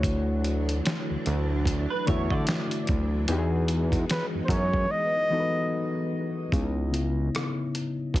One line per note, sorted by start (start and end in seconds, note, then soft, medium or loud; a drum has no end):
0.00 0.81 D2 medium
0.00 1.15 D3 medium
0.00 3.24 D3 medium
0.00 6.48 E3 medium
0.00 3.25 F#3 medium
0.00 1.16 A3 medium
0.00 3.25 D4 medium
0.00 1.16 E4 medium
0.00 1.17 F#4 medium
0.00 1.17 C#5 medium
0.00 kick loud
0.04 closed hi-hat medium
0.44 closed hi-hat medium
0.69 closed hi-hat soft
0.85 snare loud
0.85 closed hi-hat medium
1.10 1.17 D2 soft
1.26 1.86 D2 loud
1.26 closed hi-hat medium
1.65 kick medium
1.65 closed hi-hat medium
1.90 2.06 B4 medium
2.07 2.30 E2 medium
2.07 3.21 D3 medium
2.07 3.21 A3 medium
2.07 3.22 E4 medium
2.07 3.22 F#4 medium
2.07 2.31 C#5 medium
2.07 3.22 E5 medium
2.07 kick medium
2.07 closed hi-hat medium
2.30 2.46 D3 loud
2.30 3.24 D5 medium
2.30 kick medium
2.47 snare loud
2.47 closed hi-hat medium
2.71 closed hi-hat soft
2.87 3.26 D2 medium
2.87 kick medium
2.87 closed hi-hat medium
3.27 4.05 E2 loud
3.27 4.80 E3 medium
3.27 6.49 G#3 medium
3.27 6.49 B3 medium
3.27 4.81 B3 medium
3.27 6.49 D#4 medium
3.27 4.82 D#4 medium
3.27 4.82 F#4 medium
3.27 closed hi-hat medium
3.32 3.38 G4 medium
3.39 4.86 G#4 medium
3.68 closed hi-hat medium
3.92 kick medium
3.92 closed hi-hat medium
4.10 4.26 B4 medium
4.10 snare medium
4.10 closed hi-hat medium
4.35 4.41 F#2 soft
4.44 4.52 C5 medium
4.44 kick medium
4.49 4.87 F#2 loud
4.49 4.92 C#5 medium
4.49 closed hi-hat medium
4.73 kick medium
4.91 6.12 D#5 loud
5.30 6.45 E3 medium
5.30 6.45 B3 medium
5.30 6.46 D#4 medium
5.30 6.46 F#4 medium
5.30 5.40 A4 medium
5.40 6.50 B4 medium
6.52 7.30 C#2 medium
6.52 6.90 C#3 medium
6.52 6.91 B3 medium
6.52 6.91 D#4 medium
6.52 6.92 E4 medium
6.52 6.92 C#5 medium
6.52 kick medium
6.52 closed hi-hat medium
6.91 8.20 C#3 medium
6.91 8.20 B3 medium
6.91 8.20 E4 medium
6.91 8.20 D#5 medium
6.91 8.20 E5 medium
6.91 closed hi-hat soft
7.35 cross-stick medium
7.35 closed hi-hat medium
7.75 closed hi-hat medium
8.14 8.20 B1 medium
8.14 kick medium
8.14 closed hi-hat medium